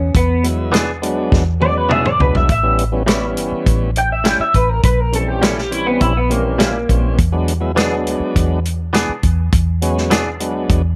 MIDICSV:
0, 0, Header, 1, 7, 480
1, 0, Start_track
1, 0, Tempo, 586510
1, 114, Time_signature, 4, 2, 24, 8
1, 8966, End_track
2, 0, Start_track
2, 0, Title_t, "Clean electric guitar"
2, 0, Program_c, 0, 27
2, 0, Note_on_c, 0, 61, 87
2, 116, Note_off_c, 0, 61, 0
2, 135, Note_on_c, 0, 59, 90
2, 357, Note_off_c, 0, 59, 0
2, 1328, Note_on_c, 0, 74, 101
2, 1439, Note_off_c, 0, 74, 0
2, 1453, Note_on_c, 0, 71, 77
2, 1560, Note_off_c, 0, 71, 0
2, 1573, Note_on_c, 0, 76, 79
2, 1682, Note_off_c, 0, 76, 0
2, 1690, Note_on_c, 0, 74, 95
2, 1799, Note_off_c, 0, 74, 0
2, 1812, Note_on_c, 0, 71, 92
2, 1921, Note_off_c, 0, 71, 0
2, 1937, Note_on_c, 0, 76, 77
2, 2042, Note_off_c, 0, 76, 0
2, 2060, Note_on_c, 0, 76, 86
2, 2281, Note_off_c, 0, 76, 0
2, 3260, Note_on_c, 0, 79, 85
2, 3365, Note_off_c, 0, 79, 0
2, 3375, Note_on_c, 0, 76, 79
2, 3492, Note_off_c, 0, 76, 0
2, 3492, Note_on_c, 0, 79, 81
2, 3602, Note_off_c, 0, 79, 0
2, 3609, Note_on_c, 0, 76, 106
2, 3718, Note_off_c, 0, 76, 0
2, 3727, Note_on_c, 0, 71, 87
2, 3842, Note_off_c, 0, 71, 0
2, 3842, Note_on_c, 0, 70, 77
2, 3955, Note_off_c, 0, 70, 0
2, 3968, Note_on_c, 0, 71, 85
2, 4095, Note_off_c, 0, 71, 0
2, 4095, Note_on_c, 0, 70, 85
2, 4201, Note_off_c, 0, 70, 0
2, 4218, Note_on_c, 0, 69, 78
2, 4324, Note_off_c, 0, 69, 0
2, 4324, Note_on_c, 0, 67, 91
2, 4439, Note_off_c, 0, 67, 0
2, 4439, Note_on_c, 0, 69, 94
2, 4563, Note_off_c, 0, 69, 0
2, 4563, Note_on_c, 0, 67, 89
2, 4681, Note_off_c, 0, 67, 0
2, 4681, Note_on_c, 0, 64, 83
2, 4796, Note_off_c, 0, 64, 0
2, 4802, Note_on_c, 0, 59, 83
2, 4914, Note_off_c, 0, 59, 0
2, 4921, Note_on_c, 0, 64, 89
2, 5036, Note_off_c, 0, 64, 0
2, 5050, Note_on_c, 0, 59, 91
2, 5159, Note_off_c, 0, 59, 0
2, 5169, Note_on_c, 0, 58, 77
2, 5395, Note_off_c, 0, 58, 0
2, 5408, Note_on_c, 0, 58, 83
2, 5867, Note_off_c, 0, 58, 0
2, 8966, End_track
3, 0, Start_track
3, 0, Title_t, "Clean electric guitar"
3, 0, Program_c, 1, 27
3, 588, Note_on_c, 1, 52, 83
3, 595, Note_on_c, 1, 59, 96
3, 600, Note_on_c, 1, 62, 89
3, 607, Note_on_c, 1, 68, 94
3, 736, Note_off_c, 1, 52, 0
3, 739, Note_off_c, 1, 59, 0
3, 742, Note_off_c, 1, 62, 0
3, 745, Note_off_c, 1, 68, 0
3, 1547, Note_on_c, 1, 52, 81
3, 1553, Note_on_c, 1, 59, 75
3, 1559, Note_on_c, 1, 62, 89
3, 1565, Note_on_c, 1, 68, 88
3, 1696, Note_off_c, 1, 52, 0
3, 1699, Note_off_c, 1, 59, 0
3, 1702, Note_off_c, 1, 62, 0
3, 1705, Note_off_c, 1, 68, 0
3, 2508, Note_on_c, 1, 45, 88
3, 2516, Note_on_c, 1, 55, 96
3, 2522, Note_on_c, 1, 61, 99
3, 2527, Note_on_c, 1, 64, 97
3, 2657, Note_off_c, 1, 45, 0
3, 2661, Note_off_c, 1, 55, 0
3, 2664, Note_off_c, 1, 61, 0
3, 2666, Note_off_c, 1, 64, 0
3, 3470, Note_on_c, 1, 45, 77
3, 3476, Note_on_c, 1, 55, 84
3, 3482, Note_on_c, 1, 61, 81
3, 3487, Note_on_c, 1, 64, 91
3, 3618, Note_off_c, 1, 45, 0
3, 3621, Note_off_c, 1, 55, 0
3, 3624, Note_off_c, 1, 61, 0
3, 3626, Note_off_c, 1, 64, 0
3, 4432, Note_on_c, 1, 46, 78
3, 4438, Note_on_c, 1, 55, 76
3, 4444, Note_on_c, 1, 61, 85
3, 4448, Note_on_c, 1, 64, 88
3, 4579, Note_off_c, 1, 46, 0
3, 4582, Note_off_c, 1, 55, 0
3, 4584, Note_off_c, 1, 61, 0
3, 4587, Note_off_c, 1, 64, 0
3, 5389, Note_on_c, 1, 46, 74
3, 5394, Note_on_c, 1, 55, 90
3, 5401, Note_on_c, 1, 61, 87
3, 5407, Note_on_c, 1, 64, 90
3, 5537, Note_off_c, 1, 46, 0
3, 5539, Note_off_c, 1, 55, 0
3, 5543, Note_off_c, 1, 61, 0
3, 5546, Note_off_c, 1, 64, 0
3, 6353, Note_on_c, 1, 52, 91
3, 6360, Note_on_c, 1, 59, 90
3, 6366, Note_on_c, 1, 62, 101
3, 6371, Note_on_c, 1, 68, 96
3, 6498, Note_off_c, 1, 52, 0
3, 6502, Note_off_c, 1, 59, 0
3, 6505, Note_off_c, 1, 62, 0
3, 6507, Note_off_c, 1, 68, 0
3, 7310, Note_on_c, 1, 52, 82
3, 7316, Note_on_c, 1, 59, 87
3, 7320, Note_on_c, 1, 62, 87
3, 7327, Note_on_c, 1, 68, 91
3, 7456, Note_off_c, 1, 52, 0
3, 7459, Note_off_c, 1, 59, 0
3, 7461, Note_off_c, 1, 62, 0
3, 7465, Note_off_c, 1, 68, 0
3, 8270, Note_on_c, 1, 52, 79
3, 8276, Note_on_c, 1, 59, 91
3, 8281, Note_on_c, 1, 62, 91
3, 8287, Note_on_c, 1, 68, 88
3, 8415, Note_off_c, 1, 52, 0
3, 8418, Note_off_c, 1, 59, 0
3, 8421, Note_off_c, 1, 62, 0
3, 8424, Note_off_c, 1, 68, 0
3, 8966, End_track
4, 0, Start_track
4, 0, Title_t, "Tonewheel organ"
4, 0, Program_c, 2, 16
4, 352, Note_on_c, 2, 54, 67
4, 357, Note_on_c, 2, 59, 60
4, 360, Note_on_c, 2, 56, 60
4, 362, Note_on_c, 2, 64, 82
4, 697, Note_off_c, 2, 54, 0
4, 699, Note_off_c, 2, 59, 0
4, 701, Note_off_c, 2, 56, 0
4, 702, Note_off_c, 2, 64, 0
4, 833, Note_on_c, 2, 54, 85
4, 836, Note_on_c, 2, 56, 74
4, 836, Note_on_c, 2, 59, 73
4, 838, Note_on_c, 2, 62, 94
4, 1177, Note_off_c, 2, 54, 0
4, 1179, Note_off_c, 2, 56, 0
4, 1179, Note_off_c, 2, 59, 0
4, 1180, Note_off_c, 2, 62, 0
4, 1308, Note_on_c, 2, 54, 75
4, 1313, Note_on_c, 2, 56, 67
4, 1315, Note_on_c, 2, 59, 77
4, 1316, Note_on_c, 2, 61, 86
4, 1655, Note_off_c, 2, 54, 0
4, 1657, Note_off_c, 2, 56, 0
4, 1658, Note_off_c, 2, 59, 0
4, 1659, Note_off_c, 2, 61, 0
4, 1794, Note_on_c, 2, 54, 72
4, 1798, Note_on_c, 2, 56, 63
4, 1802, Note_on_c, 2, 59, 63
4, 1805, Note_on_c, 2, 62, 76
4, 2034, Note_off_c, 2, 54, 0
4, 2037, Note_off_c, 2, 56, 0
4, 2039, Note_off_c, 2, 59, 0
4, 2040, Note_off_c, 2, 62, 0
4, 2152, Note_on_c, 2, 52, 74
4, 2155, Note_on_c, 2, 55, 75
4, 2155, Note_on_c, 2, 59, 70
4, 2159, Note_on_c, 2, 61, 83
4, 2325, Note_off_c, 2, 52, 0
4, 2326, Note_off_c, 2, 55, 0
4, 2326, Note_off_c, 2, 59, 0
4, 2329, Note_off_c, 2, 61, 0
4, 2388, Note_on_c, 2, 52, 76
4, 2391, Note_on_c, 2, 55, 79
4, 2393, Note_on_c, 2, 59, 73
4, 2395, Note_on_c, 2, 61, 94
4, 2477, Note_off_c, 2, 52, 0
4, 2479, Note_off_c, 2, 55, 0
4, 2480, Note_off_c, 2, 59, 0
4, 2481, Note_off_c, 2, 61, 0
4, 2506, Note_on_c, 2, 52, 78
4, 2507, Note_on_c, 2, 55, 78
4, 2510, Note_on_c, 2, 59, 68
4, 2513, Note_on_c, 2, 61, 91
4, 3196, Note_off_c, 2, 52, 0
4, 3196, Note_off_c, 2, 55, 0
4, 3198, Note_off_c, 2, 59, 0
4, 3199, Note_off_c, 2, 61, 0
4, 4192, Note_on_c, 2, 52, 76
4, 4196, Note_on_c, 2, 55, 62
4, 4196, Note_on_c, 2, 60, 69
4, 4197, Note_on_c, 2, 61, 75
4, 4537, Note_off_c, 2, 52, 0
4, 4539, Note_off_c, 2, 55, 0
4, 4539, Note_off_c, 2, 60, 0
4, 4539, Note_off_c, 2, 61, 0
4, 4671, Note_on_c, 2, 52, 66
4, 4674, Note_on_c, 2, 55, 59
4, 4674, Note_on_c, 2, 60, 61
4, 4677, Note_on_c, 2, 61, 74
4, 5016, Note_off_c, 2, 52, 0
4, 5018, Note_off_c, 2, 55, 0
4, 5018, Note_off_c, 2, 60, 0
4, 5019, Note_off_c, 2, 61, 0
4, 5153, Note_on_c, 2, 52, 83
4, 5153, Note_on_c, 2, 55, 66
4, 5158, Note_on_c, 2, 60, 72
4, 5159, Note_on_c, 2, 61, 79
4, 5497, Note_off_c, 2, 52, 0
4, 5497, Note_off_c, 2, 55, 0
4, 5500, Note_off_c, 2, 60, 0
4, 5500, Note_off_c, 2, 61, 0
4, 5637, Note_on_c, 2, 55, 71
4, 5639, Note_on_c, 2, 52, 71
4, 5643, Note_on_c, 2, 60, 71
4, 5645, Note_on_c, 2, 61, 82
4, 5876, Note_off_c, 2, 55, 0
4, 5877, Note_off_c, 2, 52, 0
4, 5878, Note_off_c, 2, 60, 0
4, 5880, Note_off_c, 2, 61, 0
4, 5993, Note_on_c, 2, 54, 96
4, 5994, Note_on_c, 2, 56, 84
4, 5997, Note_on_c, 2, 59, 84
4, 5999, Note_on_c, 2, 62, 107
4, 6165, Note_off_c, 2, 54, 0
4, 6165, Note_off_c, 2, 56, 0
4, 6167, Note_off_c, 2, 59, 0
4, 6168, Note_off_c, 2, 62, 0
4, 6221, Note_on_c, 2, 54, 87
4, 6226, Note_on_c, 2, 56, 75
4, 6226, Note_on_c, 2, 59, 75
4, 6232, Note_on_c, 2, 64, 91
4, 6313, Note_off_c, 2, 54, 0
4, 6316, Note_off_c, 2, 56, 0
4, 6316, Note_off_c, 2, 59, 0
4, 6319, Note_off_c, 2, 64, 0
4, 6342, Note_on_c, 2, 54, 81
4, 6344, Note_on_c, 2, 56, 76
4, 6349, Note_on_c, 2, 59, 72
4, 6350, Note_on_c, 2, 62, 96
4, 7032, Note_off_c, 2, 54, 0
4, 7033, Note_off_c, 2, 56, 0
4, 7036, Note_off_c, 2, 59, 0
4, 7036, Note_off_c, 2, 62, 0
4, 8034, Note_on_c, 2, 54, 83
4, 8038, Note_on_c, 2, 56, 80
4, 8039, Note_on_c, 2, 59, 78
4, 8042, Note_on_c, 2, 61, 100
4, 8375, Note_off_c, 2, 54, 0
4, 8378, Note_off_c, 2, 56, 0
4, 8378, Note_off_c, 2, 59, 0
4, 8380, Note_off_c, 2, 61, 0
4, 8510, Note_on_c, 2, 56, 70
4, 8512, Note_on_c, 2, 54, 85
4, 8513, Note_on_c, 2, 59, 77
4, 8517, Note_on_c, 2, 62, 93
4, 8853, Note_off_c, 2, 56, 0
4, 8854, Note_off_c, 2, 54, 0
4, 8855, Note_off_c, 2, 59, 0
4, 8857, Note_off_c, 2, 62, 0
4, 8966, End_track
5, 0, Start_track
5, 0, Title_t, "Fingered electric bass"
5, 0, Program_c, 3, 33
5, 0, Note_on_c, 3, 40, 94
5, 103, Note_off_c, 3, 40, 0
5, 119, Note_on_c, 3, 40, 86
5, 1045, Note_off_c, 3, 40, 0
5, 1083, Note_on_c, 3, 40, 104
5, 1766, Note_off_c, 3, 40, 0
5, 1795, Note_on_c, 3, 37, 77
5, 1904, Note_off_c, 3, 37, 0
5, 1922, Note_on_c, 3, 35, 74
5, 2026, Note_off_c, 3, 35, 0
5, 2042, Note_on_c, 3, 33, 111
5, 2760, Note_off_c, 3, 33, 0
5, 2760, Note_on_c, 3, 31, 81
5, 2873, Note_off_c, 3, 31, 0
5, 2996, Note_on_c, 3, 33, 94
5, 3564, Note_off_c, 3, 33, 0
5, 3719, Note_on_c, 3, 33, 92
5, 3944, Note_off_c, 3, 33, 0
5, 3958, Note_on_c, 3, 34, 102
5, 4884, Note_off_c, 3, 34, 0
5, 4923, Note_on_c, 3, 34, 95
5, 5606, Note_off_c, 3, 34, 0
5, 5640, Note_on_c, 3, 34, 90
5, 5864, Note_off_c, 3, 34, 0
5, 5880, Note_on_c, 3, 40, 113
5, 6595, Note_off_c, 3, 40, 0
5, 6595, Note_on_c, 3, 38, 85
5, 6704, Note_off_c, 3, 38, 0
5, 6840, Note_on_c, 3, 40, 84
5, 7404, Note_off_c, 3, 40, 0
5, 7559, Note_on_c, 3, 40, 97
5, 7782, Note_off_c, 3, 40, 0
5, 7800, Note_on_c, 3, 40, 98
5, 8722, Note_off_c, 3, 40, 0
5, 8751, Note_on_c, 3, 40, 102
5, 8966, Note_off_c, 3, 40, 0
5, 8966, End_track
6, 0, Start_track
6, 0, Title_t, "Muted fingered electric bass strokes"
6, 2882, Note_on_c, 9, 29, 38
6, 2964, Note_off_c, 9, 29, 0
6, 3599, Note_on_c, 9, 29, 33
6, 3681, Note_off_c, 9, 29, 0
6, 6709, Note_on_c, 9, 29, 39
6, 6791, Note_off_c, 9, 29, 0
6, 7441, Note_on_c, 9, 29, 31
6, 7523, Note_off_c, 9, 29, 0
6, 8966, End_track
7, 0, Start_track
7, 0, Title_t, "Drums"
7, 119, Note_on_c, 9, 36, 115
7, 120, Note_on_c, 9, 42, 87
7, 201, Note_off_c, 9, 36, 0
7, 202, Note_off_c, 9, 42, 0
7, 362, Note_on_c, 9, 42, 66
7, 444, Note_off_c, 9, 42, 0
7, 602, Note_on_c, 9, 42, 80
7, 612, Note_on_c, 9, 38, 101
7, 684, Note_off_c, 9, 42, 0
7, 694, Note_off_c, 9, 38, 0
7, 844, Note_on_c, 9, 42, 62
7, 926, Note_off_c, 9, 42, 0
7, 1081, Note_on_c, 9, 36, 102
7, 1092, Note_on_c, 9, 38, 56
7, 1163, Note_off_c, 9, 36, 0
7, 1174, Note_off_c, 9, 38, 0
7, 1323, Note_on_c, 9, 48, 70
7, 1405, Note_off_c, 9, 48, 0
7, 1562, Note_on_c, 9, 47, 86
7, 1644, Note_off_c, 9, 47, 0
7, 1682, Note_on_c, 9, 45, 75
7, 1764, Note_off_c, 9, 45, 0
7, 1802, Note_on_c, 9, 43, 86
7, 1884, Note_off_c, 9, 43, 0
7, 1923, Note_on_c, 9, 43, 84
7, 2004, Note_off_c, 9, 43, 0
7, 2037, Note_on_c, 9, 42, 76
7, 2040, Note_on_c, 9, 36, 110
7, 2118, Note_off_c, 9, 42, 0
7, 2121, Note_off_c, 9, 36, 0
7, 2280, Note_on_c, 9, 42, 57
7, 2362, Note_off_c, 9, 42, 0
7, 2517, Note_on_c, 9, 42, 75
7, 2527, Note_on_c, 9, 38, 101
7, 2599, Note_off_c, 9, 42, 0
7, 2609, Note_off_c, 9, 38, 0
7, 2757, Note_on_c, 9, 42, 61
7, 2839, Note_off_c, 9, 42, 0
7, 2999, Note_on_c, 9, 36, 104
7, 2999, Note_on_c, 9, 42, 79
7, 3081, Note_off_c, 9, 36, 0
7, 3081, Note_off_c, 9, 42, 0
7, 3239, Note_on_c, 9, 42, 60
7, 3320, Note_off_c, 9, 42, 0
7, 3477, Note_on_c, 9, 42, 85
7, 3486, Note_on_c, 9, 38, 121
7, 3558, Note_off_c, 9, 42, 0
7, 3568, Note_off_c, 9, 38, 0
7, 3718, Note_on_c, 9, 42, 64
7, 3719, Note_on_c, 9, 36, 76
7, 3800, Note_off_c, 9, 42, 0
7, 3801, Note_off_c, 9, 36, 0
7, 3956, Note_on_c, 9, 42, 89
7, 3958, Note_on_c, 9, 36, 103
7, 4037, Note_off_c, 9, 42, 0
7, 4040, Note_off_c, 9, 36, 0
7, 4200, Note_on_c, 9, 42, 65
7, 4282, Note_off_c, 9, 42, 0
7, 4439, Note_on_c, 9, 42, 83
7, 4449, Note_on_c, 9, 38, 100
7, 4521, Note_off_c, 9, 42, 0
7, 4531, Note_off_c, 9, 38, 0
7, 4571, Note_on_c, 9, 38, 34
7, 4653, Note_off_c, 9, 38, 0
7, 4682, Note_on_c, 9, 42, 55
7, 4764, Note_off_c, 9, 42, 0
7, 4915, Note_on_c, 9, 42, 72
7, 4920, Note_on_c, 9, 36, 96
7, 4997, Note_off_c, 9, 42, 0
7, 5001, Note_off_c, 9, 36, 0
7, 5161, Note_on_c, 9, 42, 59
7, 5243, Note_off_c, 9, 42, 0
7, 5399, Note_on_c, 9, 42, 87
7, 5409, Note_on_c, 9, 38, 110
7, 5481, Note_off_c, 9, 42, 0
7, 5491, Note_off_c, 9, 38, 0
7, 5641, Note_on_c, 9, 36, 78
7, 5642, Note_on_c, 9, 42, 61
7, 5723, Note_off_c, 9, 36, 0
7, 5724, Note_off_c, 9, 42, 0
7, 5879, Note_on_c, 9, 42, 80
7, 5881, Note_on_c, 9, 36, 107
7, 5961, Note_off_c, 9, 42, 0
7, 5963, Note_off_c, 9, 36, 0
7, 6121, Note_on_c, 9, 42, 59
7, 6203, Note_off_c, 9, 42, 0
7, 6361, Note_on_c, 9, 42, 73
7, 6371, Note_on_c, 9, 38, 100
7, 6443, Note_off_c, 9, 42, 0
7, 6452, Note_off_c, 9, 38, 0
7, 6602, Note_on_c, 9, 42, 53
7, 6684, Note_off_c, 9, 42, 0
7, 6841, Note_on_c, 9, 36, 97
7, 6841, Note_on_c, 9, 42, 75
7, 6923, Note_off_c, 9, 36, 0
7, 6923, Note_off_c, 9, 42, 0
7, 7082, Note_on_c, 9, 42, 60
7, 7164, Note_off_c, 9, 42, 0
7, 7318, Note_on_c, 9, 42, 86
7, 7328, Note_on_c, 9, 38, 121
7, 7400, Note_off_c, 9, 42, 0
7, 7410, Note_off_c, 9, 38, 0
7, 7554, Note_on_c, 9, 42, 57
7, 7557, Note_on_c, 9, 36, 76
7, 7636, Note_off_c, 9, 42, 0
7, 7639, Note_off_c, 9, 36, 0
7, 7794, Note_on_c, 9, 42, 87
7, 7797, Note_on_c, 9, 36, 109
7, 7876, Note_off_c, 9, 42, 0
7, 7879, Note_off_c, 9, 36, 0
7, 8037, Note_on_c, 9, 42, 61
7, 8119, Note_off_c, 9, 42, 0
7, 8166, Note_on_c, 9, 38, 32
7, 8248, Note_off_c, 9, 38, 0
7, 8273, Note_on_c, 9, 42, 85
7, 8283, Note_on_c, 9, 38, 104
7, 8355, Note_off_c, 9, 42, 0
7, 8365, Note_off_c, 9, 38, 0
7, 8513, Note_on_c, 9, 42, 61
7, 8595, Note_off_c, 9, 42, 0
7, 8753, Note_on_c, 9, 42, 77
7, 8754, Note_on_c, 9, 36, 103
7, 8834, Note_off_c, 9, 42, 0
7, 8836, Note_off_c, 9, 36, 0
7, 8966, End_track
0, 0, End_of_file